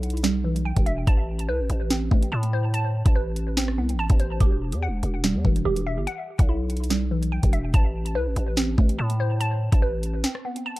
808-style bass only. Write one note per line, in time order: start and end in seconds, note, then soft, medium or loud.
0.00 0.73 B1 loud
0.77 1.06 E1 loud
1.07 1.50 A1 loud
1.49 1.61 C2 loud
1.60 1.69 A1 loud
1.70 2.10 A1 loud
2.11 2.31 A1 loud
2.32 3.03 A2 loud
3.06 3.80 A1 loud
3.78 3.96 C2 loud
3.94 4.09 A1 loud
4.10 4.39 A1 loud
4.40 4.74 E1 loud
4.72 4.89 E2 loud
4.88 5.02 E1 loud
5.03 5.36 E1 loud
5.35 5.44 E2 loud
5.45 5.65 E1 loud
5.65 5.99 E1 loud
5.97 6.07 G1 loud
6.39 7.39 B1 loud
7.43 7.73 E1 loud
7.74 8.17 A1 loud
8.16 8.28 C2 loud
8.27 8.36 A1 loud
8.36 8.76 A1 loud
8.78 8.98 A1 loud
8.99 9.69 A2 loud
9.72 10.24 A1 loud